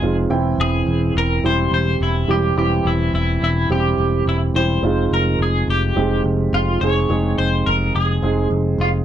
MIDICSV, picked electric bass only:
0, 0, Header, 1, 2, 480
1, 0, Start_track
1, 0, Tempo, 565931
1, 257, Time_signature, 4, 2, 24, 8
1, 7673, End_track
2, 0, Start_track
2, 0, Title_t, "Picked electric bass"
2, 0, Program_c, 0, 34
2, 19, Note_on_c, 0, 29, 91
2, 215, Note_off_c, 0, 29, 0
2, 254, Note_on_c, 0, 28, 92
2, 452, Note_off_c, 0, 28, 0
2, 495, Note_on_c, 0, 28, 87
2, 693, Note_off_c, 0, 28, 0
2, 734, Note_on_c, 0, 28, 85
2, 932, Note_off_c, 0, 28, 0
2, 980, Note_on_c, 0, 28, 90
2, 1176, Note_off_c, 0, 28, 0
2, 1219, Note_on_c, 0, 28, 91
2, 1415, Note_off_c, 0, 28, 0
2, 1454, Note_on_c, 0, 28, 90
2, 1652, Note_off_c, 0, 28, 0
2, 1702, Note_on_c, 0, 28, 95
2, 1897, Note_off_c, 0, 28, 0
2, 1934, Note_on_c, 0, 28, 93
2, 2132, Note_off_c, 0, 28, 0
2, 2171, Note_on_c, 0, 28, 90
2, 2371, Note_off_c, 0, 28, 0
2, 2418, Note_on_c, 0, 28, 90
2, 2615, Note_off_c, 0, 28, 0
2, 2659, Note_on_c, 0, 28, 89
2, 2855, Note_off_c, 0, 28, 0
2, 2897, Note_on_c, 0, 28, 82
2, 3094, Note_off_c, 0, 28, 0
2, 3134, Note_on_c, 0, 28, 89
2, 3332, Note_off_c, 0, 28, 0
2, 3376, Note_on_c, 0, 28, 89
2, 3574, Note_off_c, 0, 28, 0
2, 3613, Note_on_c, 0, 28, 84
2, 3812, Note_off_c, 0, 28, 0
2, 3851, Note_on_c, 0, 28, 89
2, 4051, Note_off_c, 0, 28, 0
2, 4095, Note_on_c, 0, 29, 81
2, 4293, Note_off_c, 0, 29, 0
2, 4335, Note_on_c, 0, 29, 84
2, 4533, Note_off_c, 0, 29, 0
2, 4571, Note_on_c, 0, 29, 84
2, 4771, Note_off_c, 0, 29, 0
2, 4814, Note_on_c, 0, 29, 81
2, 5013, Note_off_c, 0, 29, 0
2, 5060, Note_on_c, 0, 29, 90
2, 5256, Note_off_c, 0, 29, 0
2, 5293, Note_on_c, 0, 29, 86
2, 5492, Note_off_c, 0, 29, 0
2, 5538, Note_on_c, 0, 29, 95
2, 5735, Note_off_c, 0, 29, 0
2, 5778, Note_on_c, 0, 29, 82
2, 5975, Note_off_c, 0, 29, 0
2, 6019, Note_on_c, 0, 29, 87
2, 6216, Note_off_c, 0, 29, 0
2, 6262, Note_on_c, 0, 29, 84
2, 6457, Note_off_c, 0, 29, 0
2, 6505, Note_on_c, 0, 29, 88
2, 6699, Note_off_c, 0, 29, 0
2, 6742, Note_on_c, 0, 29, 88
2, 6937, Note_off_c, 0, 29, 0
2, 6975, Note_on_c, 0, 29, 85
2, 7173, Note_off_c, 0, 29, 0
2, 7214, Note_on_c, 0, 29, 84
2, 7413, Note_off_c, 0, 29, 0
2, 7450, Note_on_c, 0, 29, 93
2, 7650, Note_off_c, 0, 29, 0
2, 7673, End_track
0, 0, End_of_file